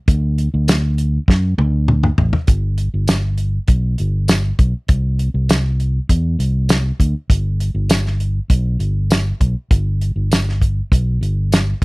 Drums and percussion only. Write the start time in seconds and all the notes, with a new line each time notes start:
0.08 kick, closed hi-hat
0.38 closed hi-hat
0.68 snare, closed hi-hat, tambourine
0.98 closed hi-hat
1.28 kick, snare
1.58 high tom
1.88 mid tom
2.03 mid tom
2.18 floor tom
2.33 floor tom
2.47 kick, closed hi-hat
2.78 closed hi-hat
3.08 snare, closed hi-hat, tambourine
3.38 closed hi-hat
3.68 kick, closed hi-hat
3.98 closed hi-hat
4.28 snare, closed hi-hat, tambourine
4.59 kick, closed hi-hat
4.88 kick, closed hi-hat
5.19 closed hi-hat
5.49 snare, closed hi-hat, tambourine
5.80 closed hi-hat
6.09 kick, closed hi-hat
6.40 closed hi-hat
6.69 snare, closed hi-hat, tambourine
7.00 kick, closed hi-hat
7.30 kick, closed hi-hat
7.60 closed hi-hat
7.89 snare, closed hi-hat, tambourine
8.06 snare
8.20 closed hi-hat
8.50 kick, closed hi-hat
8.80 closed hi-hat
9.10 snare, closed hi-hat, tambourine
9.41 kick, closed hi-hat
9.71 kick, closed hi-hat
10.01 closed hi-hat
10.32 snare, closed hi-hat, tambourine
10.49 snare
10.61 kick, closed hi-hat
10.92 kick, closed hi-hat
11.23 closed hi-hat
11.52 snare, closed hi-hat, tambourine